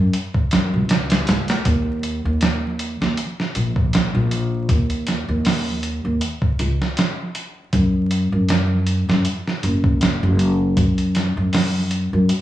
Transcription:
0.00 0.12 F#2 medium
0.13 closed hi-hat medium
0.34 kick loud
0.51 0.75 F#2 medium
0.51 snare loud
0.51 closed hi-hat medium
0.74 1.25 C#2 medium
0.89 snare loud
0.89 closed hi-hat medium
1.10 snare loud
1.10 closed hi-hat medium
1.27 1.47 C#2 medium
1.27 snare loud
1.27 closed hi-hat medium
1.48 snare loud
1.48 closed hi-hat medium
1.65 2.21 D#2 loud
1.65 kick loud
1.65 closed hi-hat medium
2.03 closed hi-hat medium
2.25 2.97 D#2 medium
2.41 snare loud
2.41 closed hi-hat medium
2.79 closed hi-hat medium
3.01 3.16 D#2 medium
3.01 snare medium
3.17 closed hi-hat medium
3.40 snare soft
3.55 4.11 A#1 medium
3.55 closed hi-hat medium
3.76 kick loud
3.93 snare loud
3.93 closed hi-hat medium
4.15 4.66 A#1 loud
4.31 closed hi-hat medium
4.69 5.24 D#2 loud
4.69 kick loud
4.69 closed hi-hat medium
4.90 closed hi-hat soft
5.07 snare medium
5.07 closed hi-hat medium
5.29 6.00 D#2 loud
5.45 snare loud
5.45 open hi-hat medium
5.83 closed hi-hat medium
6.05 6.20 D#2 medium
6.21 closed hi-hat medium
6.42 kick medium
6.59 6.78 C#2 medium
6.59 closed hi-hat medium
6.82 snare soft
6.97 snare loud
6.97 closed hi-hat medium
7.35 closed hi-hat medium
7.73 8.28 F#2 loud
7.73 kick loud
7.73 closed hi-hat medium
8.11 closed hi-hat medium
8.32 9.04 F#2 medium
8.49 snare loud
8.49 closed hi-hat medium
8.87 closed hi-hat medium
9.09 9.23 F#2 medium
9.09 snare medium
9.25 closed hi-hat medium
9.48 snare soft
9.63 10.18 F#1 medium
9.63 closed hi-hat medium
9.84 kick loud
10.01 snare loud
10.01 closed hi-hat medium
10.23 10.74 F#1 loud
10.39 closed hi-hat medium
10.77 11.32 F#2 loud
10.77 kick loud
10.77 closed hi-hat medium
10.98 closed hi-hat soft
11.15 snare medium
11.15 closed hi-hat medium
11.37 12.08 F#2 loud
11.53 snare loud
11.53 open hi-hat medium
11.91 closed hi-hat medium
12.13 12.28 F#2 medium
12.29 closed hi-hat medium

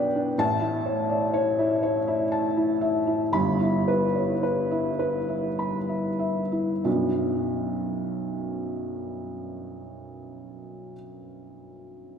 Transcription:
0.00 0.33 B1 medium
0.00 0.34 B2 medium
0.00 0.16 D4 medium
0.00 0.41 B4 medium
0.00 0.41 C#5 medium
0.00 0.29 D5 medium
0.00 0.41 G5 medium
0.16 0.39 D4 medium
0.38 3.29 A1 medium
0.38 3.30 A2 medium
0.38 0.76 A5 loud
0.61 0.99 E4 medium
0.86 1.24 C#5 medium
1.09 1.34 D5 medium
1.33 1.73 C#5 medium
1.59 1.97 E4 medium
1.83 2.22 C#5 medium
2.07 2.47 E4 medium
2.32 2.72 A5 medium
2.57 2.97 E4 medium
2.81 3.23 E5 medium
3.07 3.33 E4 medium
3.32 6.81 G1 medium
3.32 6.81 G2 medium
3.32 3.76 B5 medium
3.61 4.04 E4 medium
3.88 4.32 B4 medium
4.15 4.43 C#5 medium
4.43 4.88 B4 medium
4.71 5.17 E4 medium
4.99 5.47 B4 medium
5.28 5.77 E4 medium
5.59 6.09 B5 medium
5.89 6.40 E4 soft
6.19 6.71 E5 medium
6.52 6.84 E4 soft
6.84 10.92 B1 medium
6.84 10.92 F#2 soft
6.84 10.92 F#3 soft
6.84 10.93 B3 soft
6.84 10.93 D4 soft
6.84 10.93 F#4 soft

